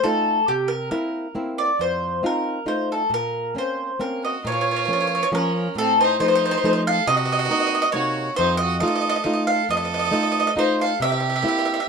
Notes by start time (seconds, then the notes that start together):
0.04 A3 D#4 F4 A4
0.48 C3 G4
0.68 A#4
0.91 A#3 C4 E4 A#4
1.35 A#3 C4 E4
1.58 D5
1.79 F2 C5
2.23 C4 D#4 F4 A#4
2.66 A3 D#4 F4 C5
2.92 A4
3.10 A#2 A#4
3.55 A#3 C4 C#4 C5
3.99 A#3 C4 C#4 A#4
4.23 F#4 D#5
4.45 A#2 F4 C#5
4.52 C#5
4.61 C#5
4.71 C#5
4.76 C#5
4.85 F3 A#3 C#4 C#5
4.93 C#5
5.00 C#5
5.07 C#5
5.15 C#5
5.23 C#5
5.32 F3 A#3 C#4 A#4
5.75 A2 C4 A4
6.01 D#4 C5
6.20 F3 A3 D#4 C5
6.28 C5
6.35 C5
6.45 C5
6.51 C5
6.58 C5
6.64 F3 A3 D#4 C5
6.73 C5
6.87 A4 F5
7.07 C3 F#4 D#5
7.17 D#5
7.25 D#5
7.32 D#5
7.39 D#5
7.45 D#5
7.49 A#3 C4 D#4 D#5
7.60 D#5
7.67 D#5
7.75 D#5
7.82 D#5
7.92 C3 A#3 D#4 F#4 C#5
8.36 F2 D#4 C5
8.57 F#4 D#5
8.80 A3 D#4 F4 A4 D#5
8.87 D#5
8.96 D#5
9.01 D#5
9.09 D#5
9.16 D#5
9.24 A3 D#4 F4 D#5
9.34 D#5
9.47 A4 F5
9.69 F2 A4 D#5
9.77 D#5
9.85 D#5
9.94 D#5
9.99 D#5
10.05 D#5
10.11 A3 D#4 F4 D#5
10.23 D#5
10.32 D#5
10.40 D#5
10.47 D#5
10.56 A3 D#4 F4 C5
10.81 A4 F5
11.00 C3 G4 E5
11.12 E5
11.20 E5
11.30 E5
11.36 E5
11.43 A#3 C4 E4 E5
11.48 E5
11.59 E5
11.65 E5
11.74 E5
11.80 E5